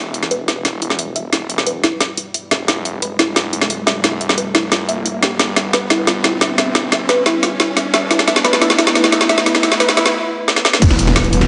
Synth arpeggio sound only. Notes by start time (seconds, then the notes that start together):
0.14 E5
0.31 B4
0.48 E4
0.65 E4
0.82 E4
0.99 E5
1.16 E5
1.33 E4
1.50 E5
1.67 B4
1.84 E4
2.01 E4
2.18 E4
2.34 E5
2.51 E5
2.68 E4
2.85 E5
3.02 B4
3.19 E4
3.36 F4
3.53 E4
3.70 E5
3.87 E5
4.04 E4
4.21 E5
4.38 B4
4.55 E4
4.72 F4
4.88 E5
5.05 E4
5.22 G4
5.39 E4
5.56 E5
5.73 B4
5.90 E4
6.07 F4
6.24 E4
6.41 E5
6.58 E5
6.75 E4
6.92 E5
7.09 B4
7.26 E4
7.43 F4
7.60 E4
7.77 E5
7.94 E5
8.11 E4
8.28 E5
8.44 B4
8.61 E4
8.78 E4
8.95 E4
9.12 E5
9.29 E5
9.46 E4
9.63 E5
9.80 B4
9.97 E4